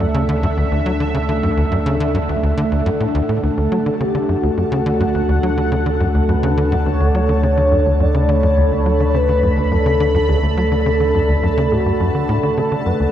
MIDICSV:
0, 0, Header, 1, 6, 480
1, 0, Start_track
1, 0, Key_signature, 2, "major"
1, 0, Tempo, 571429
1, 963, Time_signature, 4, 2, 24, 8
1, 11018, End_track
2, 0, Start_track
2, 0, Title_t, "Synth texture"
2, 0, Program_c, 0, 99
2, 0, Note_on_c, 0, 78, 78
2, 2886, Note_on_c, 0, 81, 77
2, 2893, Note_off_c, 0, 78, 0
2, 11018, Note_off_c, 0, 81, 0
2, 11018, End_track
3, 0, Start_track
3, 0, Title_t, "Analog synth pad"
3, 0, Program_c, 1, 89
3, 0, Note_on_c, 1, 57, 80
3, 0, Note_on_c, 1, 62, 73
3, 0, Note_on_c, 1, 69, 71
3, 0, Note_on_c, 1, 76, 92
3, 2874, Note_off_c, 1, 76, 0
3, 2883, Note_on_c, 1, 78, 91
3, 6713, Note_off_c, 1, 78, 0
3, 6724, Note_on_c, 1, 83, 86
3, 10554, Note_off_c, 1, 83, 0
3, 10563, Note_on_c, 1, 78, 93
3, 11018, Note_off_c, 1, 57, 0
3, 11018, Note_off_c, 1, 62, 0
3, 11018, Note_off_c, 1, 69, 0
3, 11018, Note_off_c, 1, 78, 0
3, 11018, End_track
4, 0, Start_track
4, 0, Title_t, "Analog synth lead"
4, 0, Program_c, 2, 81
4, 2886, Note_on_c, 2, 69, 101
4, 3331, Note_off_c, 2, 69, 0
4, 3364, Note_on_c, 2, 67, 91
4, 3683, Note_off_c, 2, 67, 0
4, 3683, Note_on_c, 2, 66, 91
4, 3844, Note_off_c, 2, 66, 0
4, 3844, Note_on_c, 2, 66, 93
4, 4803, Note_on_c, 2, 69, 103
4, 4816, Note_off_c, 2, 66, 0
4, 5284, Note_on_c, 2, 71, 101
4, 5296, Note_off_c, 2, 69, 0
4, 5757, Note_off_c, 2, 71, 0
4, 5762, Note_on_c, 2, 73, 108
4, 5931, Note_off_c, 2, 73, 0
4, 5944, Note_on_c, 2, 74, 74
4, 6004, Note_on_c, 2, 73, 124
4, 6016, Note_off_c, 2, 74, 0
4, 6722, Note_on_c, 2, 74, 109
4, 6735, Note_off_c, 2, 73, 0
4, 6963, Note_on_c, 2, 73, 120
4, 6976, Note_off_c, 2, 74, 0
4, 7683, Note_on_c, 2, 71, 106
4, 7696, Note_off_c, 2, 73, 0
4, 8164, Note_on_c, 2, 69, 94
4, 8176, Note_off_c, 2, 71, 0
4, 8637, Note_off_c, 2, 69, 0
4, 8642, Note_on_c, 2, 69, 110
4, 9843, Note_on_c, 2, 66, 99
4, 9856, Note_off_c, 2, 69, 0
4, 10563, Note_on_c, 2, 69, 97
4, 10576, Note_off_c, 2, 66, 0
4, 10803, Note_on_c, 2, 71, 104
4, 10816, Note_off_c, 2, 69, 0
4, 11018, Note_off_c, 2, 71, 0
4, 11018, End_track
5, 0, Start_track
5, 0, Title_t, "Analog synth bass"
5, 0, Program_c, 3, 38
5, 2, Note_on_c, 3, 42, 76
5, 61, Note_off_c, 3, 42, 0
5, 122, Note_on_c, 3, 49, 99
5, 211, Note_off_c, 3, 49, 0
5, 242, Note_on_c, 3, 50, 100
5, 301, Note_off_c, 3, 50, 0
5, 362, Note_on_c, 3, 42, 98
5, 398, Note_off_c, 3, 42, 0
5, 482, Note_on_c, 3, 38, 78
5, 542, Note_off_c, 3, 38, 0
5, 603, Note_on_c, 3, 38, 71
5, 691, Note_off_c, 3, 38, 0
5, 722, Note_on_c, 3, 54, 74
5, 782, Note_off_c, 3, 54, 0
5, 842, Note_on_c, 3, 50, 73
5, 878, Note_off_c, 3, 50, 0
5, 962, Note_on_c, 3, 49, 79
5, 998, Note_off_c, 3, 49, 0
5, 1082, Note_on_c, 3, 50, 74
5, 1118, Note_off_c, 3, 50, 0
5, 1203, Note_on_c, 3, 42, 72
5, 1262, Note_off_c, 3, 42, 0
5, 1322, Note_on_c, 3, 38, 74
5, 1381, Note_off_c, 3, 38, 0
5, 1442, Note_on_c, 3, 42, 82
5, 1502, Note_off_c, 3, 42, 0
5, 1563, Note_on_c, 3, 49, 97
5, 1651, Note_off_c, 3, 49, 0
5, 1683, Note_on_c, 3, 50, 96
5, 1742, Note_off_c, 3, 50, 0
5, 1803, Note_on_c, 3, 42, 95
5, 1838, Note_off_c, 3, 42, 0
5, 1924, Note_on_c, 3, 38, 76
5, 1982, Note_off_c, 3, 38, 0
5, 2043, Note_on_c, 3, 38, 72
5, 2131, Note_off_c, 3, 38, 0
5, 2163, Note_on_c, 3, 50, 95
5, 2222, Note_off_c, 3, 50, 0
5, 2283, Note_on_c, 3, 38, 73
5, 2371, Note_off_c, 3, 38, 0
5, 2403, Note_on_c, 3, 42, 100
5, 2438, Note_off_c, 3, 42, 0
5, 2524, Note_on_c, 3, 45, 73
5, 2582, Note_off_c, 3, 45, 0
5, 2644, Note_on_c, 3, 38, 103
5, 2702, Note_off_c, 3, 38, 0
5, 2764, Note_on_c, 3, 45, 69
5, 2852, Note_off_c, 3, 45, 0
5, 2884, Note_on_c, 3, 38, 78
5, 2942, Note_off_c, 3, 38, 0
5, 3004, Note_on_c, 3, 38, 76
5, 3092, Note_off_c, 3, 38, 0
5, 3124, Note_on_c, 3, 54, 75
5, 3182, Note_off_c, 3, 54, 0
5, 3244, Note_on_c, 3, 50, 72
5, 3279, Note_off_c, 3, 50, 0
5, 3365, Note_on_c, 3, 49, 79
5, 3399, Note_off_c, 3, 49, 0
5, 3484, Note_on_c, 3, 50, 77
5, 3519, Note_off_c, 3, 50, 0
5, 3604, Note_on_c, 3, 42, 68
5, 3662, Note_off_c, 3, 42, 0
5, 3724, Note_on_c, 3, 38, 70
5, 3782, Note_off_c, 3, 38, 0
5, 3843, Note_on_c, 3, 42, 75
5, 3902, Note_off_c, 3, 42, 0
5, 3964, Note_on_c, 3, 49, 100
5, 4052, Note_off_c, 3, 49, 0
5, 4083, Note_on_c, 3, 50, 98
5, 4142, Note_off_c, 3, 50, 0
5, 4204, Note_on_c, 3, 42, 98
5, 4239, Note_off_c, 3, 42, 0
5, 4324, Note_on_c, 3, 38, 81
5, 4382, Note_off_c, 3, 38, 0
5, 4443, Note_on_c, 3, 38, 74
5, 4531, Note_off_c, 3, 38, 0
5, 4563, Note_on_c, 3, 54, 73
5, 4622, Note_off_c, 3, 54, 0
5, 4684, Note_on_c, 3, 50, 75
5, 4719, Note_off_c, 3, 50, 0
5, 4804, Note_on_c, 3, 49, 80
5, 4839, Note_off_c, 3, 49, 0
5, 4923, Note_on_c, 3, 50, 76
5, 4958, Note_off_c, 3, 50, 0
5, 5043, Note_on_c, 3, 42, 75
5, 5102, Note_off_c, 3, 42, 0
5, 5164, Note_on_c, 3, 38, 71
5, 5222, Note_off_c, 3, 38, 0
5, 5283, Note_on_c, 3, 42, 82
5, 5342, Note_off_c, 3, 42, 0
5, 5403, Note_on_c, 3, 49, 97
5, 5491, Note_off_c, 3, 49, 0
5, 5523, Note_on_c, 3, 50, 93
5, 5582, Note_off_c, 3, 50, 0
5, 5644, Note_on_c, 3, 42, 101
5, 5679, Note_off_c, 3, 42, 0
5, 5764, Note_on_c, 3, 38, 76
5, 5822, Note_off_c, 3, 38, 0
5, 5883, Note_on_c, 3, 38, 78
5, 5971, Note_off_c, 3, 38, 0
5, 6004, Note_on_c, 3, 54, 75
5, 6062, Note_off_c, 3, 54, 0
5, 6124, Note_on_c, 3, 50, 72
5, 6159, Note_off_c, 3, 50, 0
5, 6244, Note_on_c, 3, 49, 78
5, 6279, Note_off_c, 3, 49, 0
5, 6364, Note_on_c, 3, 50, 75
5, 6399, Note_off_c, 3, 50, 0
5, 6484, Note_on_c, 3, 42, 72
5, 6542, Note_off_c, 3, 42, 0
5, 6603, Note_on_c, 3, 38, 74
5, 6662, Note_off_c, 3, 38, 0
5, 6723, Note_on_c, 3, 42, 78
5, 6782, Note_off_c, 3, 42, 0
5, 6842, Note_on_c, 3, 49, 94
5, 6931, Note_off_c, 3, 49, 0
5, 6963, Note_on_c, 3, 50, 96
5, 7022, Note_off_c, 3, 50, 0
5, 7082, Note_on_c, 3, 42, 97
5, 7118, Note_off_c, 3, 42, 0
5, 7202, Note_on_c, 3, 38, 81
5, 7262, Note_off_c, 3, 38, 0
5, 7322, Note_on_c, 3, 38, 73
5, 7411, Note_off_c, 3, 38, 0
5, 7443, Note_on_c, 3, 54, 69
5, 7502, Note_off_c, 3, 54, 0
5, 7563, Note_on_c, 3, 50, 74
5, 7598, Note_off_c, 3, 50, 0
5, 7683, Note_on_c, 3, 49, 75
5, 7718, Note_off_c, 3, 49, 0
5, 7803, Note_on_c, 3, 50, 78
5, 7839, Note_off_c, 3, 50, 0
5, 7923, Note_on_c, 3, 42, 74
5, 7982, Note_off_c, 3, 42, 0
5, 8043, Note_on_c, 3, 38, 74
5, 8102, Note_off_c, 3, 38, 0
5, 8163, Note_on_c, 3, 42, 76
5, 8222, Note_off_c, 3, 42, 0
5, 8282, Note_on_c, 3, 49, 94
5, 8371, Note_off_c, 3, 49, 0
5, 8403, Note_on_c, 3, 50, 101
5, 8462, Note_off_c, 3, 50, 0
5, 8523, Note_on_c, 3, 42, 96
5, 8558, Note_off_c, 3, 42, 0
5, 8644, Note_on_c, 3, 38, 81
5, 8702, Note_off_c, 3, 38, 0
5, 8763, Note_on_c, 3, 38, 71
5, 8851, Note_off_c, 3, 38, 0
5, 8883, Note_on_c, 3, 54, 74
5, 8942, Note_off_c, 3, 54, 0
5, 9003, Note_on_c, 3, 50, 73
5, 9039, Note_off_c, 3, 50, 0
5, 9123, Note_on_c, 3, 49, 82
5, 9159, Note_off_c, 3, 49, 0
5, 9243, Note_on_c, 3, 50, 75
5, 9278, Note_off_c, 3, 50, 0
5, 9363, Note_on_c, 3, 42, 72
5, 9422, Note_off_c, 3, 42, 0
5, 9483, Note_on_c, 3, 38, 75
5, 9542, Note_off_c, 3, 38, 0
5, 9603, Note_on_c, 3, 42, 77
5, 9662, Note_off_c, 3, 42, 0
5, 9724, Note_on_c, 3, 49, 101
5, 9812, Note_off_c, 3, 49, 0
5, 9844, Note_on_c, 3, 45, 72
5, 9903, Note_off_c, 3, 45, 0
5, 9965, Note_on_c, 3, 43, 75
5, 10023, Note_off_c, 3, 43, 0
5, 10084, Note_on_c, 3, 42, 78
5, 10172, Note_off_c, 3, 42, 0
5, 10204, Note_on_c, 3, 50, 68
5, 10292, Note_off_c, 3, 50, 0
5, 10323, Note_on_c, 3, 45, 100
5, 10411, Note_off_c, 3, 45, 0
5, 10444, Note_on_c, 3, 50, 73
5, 10502, Note_off_c, 3, 50, 0
5, 10564, Note_on_c, 3, 49, 79
5, 10599, Note_off_c, 3, 49, 0
5, 10684, Note_on_c, 3, 50, 74
5, 10719, Note_off_c, 3, 50, 0
5, 10803, Note_on_c, 3, 42, 74
5, 10862, Note_off_c, 3, 42, 0
5, 10922, Note_on_c, 3, 38, 74
5, 10982, Note_off_c, 3, 38, 0
5, 11018, End_track
6, 0, Start_track
6, 0, Title_t, "Sub bass"
6, 0, Program_c, 4, 38
6, 0, Note_on_c, 4, 38, 82
6, 2859, Note_off_c, 4, 38, 0
6, 2882, Note_on_c, 4, 38, 83
6, 10539, Note_off_c, 4, 38, 0
6, 10563, Note_on_c, 4, 38, 83
6, 11018, Note_off_c, 4, 38, 0
6, 11018, End_track
0, 0, End_of_file